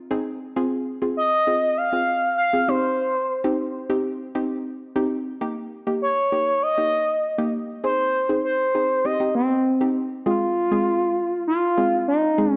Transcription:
0.11 synth pluck C4 D#4 G#4
0.56 synth pluck C4 F4 G#4
1.02 synth pluck C4 F4 G#4
1.17 analog synth lead D#5
1.47 synth pluck C4 F4 G#4
1.77 analog synth lead F5
1.93 synth pluck C4 F4 G#4
2.38 analog synth lead F5
2.53 synth pluck C4 F4 G#4
2.68 synth pluck C4 D#4 G4, analog synth lead C5
3.44 synth pluck C4 D#4 G4
3.90 synth pluck C4 D#4 G4
4.35 synth pluck C4 D#4 G4
4.96 synth pluck C4 D#4 G4
5.41 synth pluck A#3 D#4 G4
5.87 synth pluck A#3 D#4 G4
6.02 analog synth lead C#5
6.32 synth pluck A#3 D#4 G4
6.63 analog synth lead D#5
6.78 synth pluck A#3 D#4 G4
7.38 synth pluck A#3 D#4 G4
7.84 synth pluck C4 D#4 G#4, analog synth lead C5
8.29 synth pluck C4 D#4 G#4
8.44 analog synth lead C5
8.75 synth pluck C4 D#4 G#4
9.05 synth pluck C4 D#4 G4, analog synth lead D#5
9.20 synth pluck C4 D#4 G4
9.35 analog synth lead C4
9.81 synth pluck C4 D#4 G4
10.26 synth pluck G#3 C4 F4 G#4, analog synth lead F4
10.71 synth pluck G#3 C4 F4 G#4
11.47 analog synth lead F4
11.77 synth pluck G#3 C4 F4 G#4
12.08 analog synth lead D#4
12.38 synth pluck G#3 C4 D#4 G#4
12.51 analog synth lead C#4

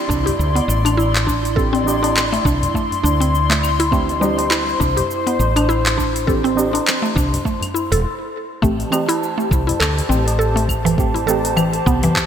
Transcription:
Already playing: synth stab E3 C4 D4 G4, analog synth pad E4 D5 C6
0.09 fretless electric bass C2, synth pluck D4, kick, cabasa
0.26 synth pluck G4, open hi-hat, tabla tin, tabla ge, cabasa
0.39 fretless electric bass D2, cabasa
0.55 synth pluck B3, open hi-hat, tabla tin, cabasa
0.68 fretless electric bass A1, tabla tin, cabasa
0.85 synth pluck D4, open hi-hat, tabla na, cabasa, claves
0.97 synth pluck E4, cabasa
1.15 clap, open hi-hat, cabasa
1.27 synth pluck D4, kick, cabasa
1.45 open hi-hat, cabasa
1.55 synth stab E3 C4 D4 G4, synth pluck A4, kick, cabasa
1.73 synth pluck C4, open hi-hat, tabla tin, cabasa
1.83 synth stab E3 C4 D4 G4, tabla na
1.88 cabasa
2.03 synth pluck D4, open hi-hat, tabla na, cabasa
2.17 clap, cabasa
2.33 synth pluck A3, open hi-hat, cabasa
2.45 fretless electric bass C2, synth pluck D4, kick, cabasa
2.62 open hi-hat, tabla tin, tabla ge, cabasa
2.74 synth pluck A3, kick, cabasa
2.91 open hi-hat, tabla ge, cabasa
3.03 fretless electric bass D2, synth pluck D4, cabasa
3.20 synth pluck C4, open hi-hat, cabasa
3.35 cabasa
3.50 synth pluck A3, clap, open hi-hat, cabasa
3.63 cabasa, claves
3.80 synth pluck E4, open hi-hat, cabasa
3.91 synth stab E3 C4 D4 G4, synth pluck A3, analog synth pad C5, kick, cabasa
4.09 open hi-hat, tabla tin, cabasa
4.19 synth stab E3 C4 D4, synth pluck G3, tabla na, cabasa
4.24 synth stab G4
4.38 open hi-hat, tabla na, cabasa
4.51 synth pluck E4, clap, cabasa
4.69 cabasa
4.80 fretless electric bass C2, synth pluck D4, kick, cabasa
4.97 synth pluck G4, open hi-hat, tabla tin, tabla ge, cabasa
5.11 cabasa
5.27 synth pluck B3, open hi-hat, tabla tin, cabasa
5.39 fretless electric bass A1, tabla tin, cabasa
5.56 synth pluck D4, open hi-hat, tabla na, cabasa, claves
5.69 synth pluck E4, cabasa
5.86 clap, open hi-hat, cabasa
5.98 synth pluck D4, kick, cabasa
6.16 open hi-hat, cabasa
6.27 synth stab E3 C4 D4 G4, synth pluck A4, kick, cabasa
6.44 synth pluck C4, open hi-hat, tabla tin, cabasa
6.55 synth stab E3 C4 D4, tabla na, cabasa
6.59 synth stab G4
6.73 synth pluck D4, open hi-hat, tabla na, cabasa
6.88 clap, cabasa
7.02 synth pluck A3, tabla na, cabasa
7.16 fretless electric bass C2, synth pluck D4, kick, cabasa
7.33 open hi-hat, tabla tin, tabla ge, cabasa
7.45 synth pluck A3, kick, cabasa
7.61 open hi-hat, tabla ge, cabasa, claves
7.74 synth pluck E4, cabasa
7.92 fretless electric bass E1, synth pluck A4, open hi-hat, cabasa
8.62 fretless electric bass A1, synth stab E3 A3 C4 G4, synth pluck A3, analog synth pad G4 C5 A5, kick, cabasa
8.79 open hi-hat, tabla tin, cabasa
8.90 synth stab E3 A3 C4, synth pluck C4, tabla na, cabasa, claves
8.94 synth stab G4
9.09 synth pluck E4, open hi-hat, tabla na, cabasa
9.23 cabasa
9.38 synth pluck A3, cabasa
9.51 fretless electric bass C2, kick, cabasa
9.67 synth pluck E4, open hi-hat, tabla tin, tabla ge, cabasa
9.80 fretless electric bass D2, synth pluck A4, clap, cabasa, claves
9.96 open hi-hat, tabla tin, cabasa
10.09 fretless electric bass A1, synth pluck C4, tabla tin, cabasa
10.27 open hi-hat, tabla na, cabasa
10.39 synth pluck A4, cabasa
10.56 synth pluck A3, open hi-hat, cabasa
10.69 kick, cabasa, claves
10.85 synth pluck E3, open hi-hat, tabla ge, cabasa
10.97 synth stab E3 A3 C4 G4, kick, cabasa
11.14 synth pluck E4, open hi-hat, tabla tin, cabasa
11.26 synth stab E3 A3 C4, synth pluck A4, tabla na, cabasa
11.30 synth stab G4
11.45 open hi-hat, tabla na, cabasa
11.57 synth pluck E3, cabasa, claves
11.73 open hi-hat, cabasa
11.86 fretless electric bass C2, synth pluck B3, kick, cabasa
12.03 synth pluck E3, open hi-hat, tabla tin, tabla ge, cabasa
12.16 kick, clap, cabasa

